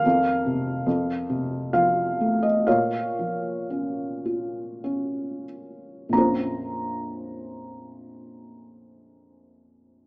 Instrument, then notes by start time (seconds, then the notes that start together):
felt piano
Already playing: A#4 F5
0.05 F2
0.46 C3
0.86 F2
1.30 C3
1.73 F3 F5
2.21 A3
2.43 D#5
2.67 A#2 C#5 F5
3.19 F3
3.70 C#4
4.25 F4
4.84 C#4
6.09 A#1 F2 A#5
6.13 A#3 C#4 F4
6.18 C5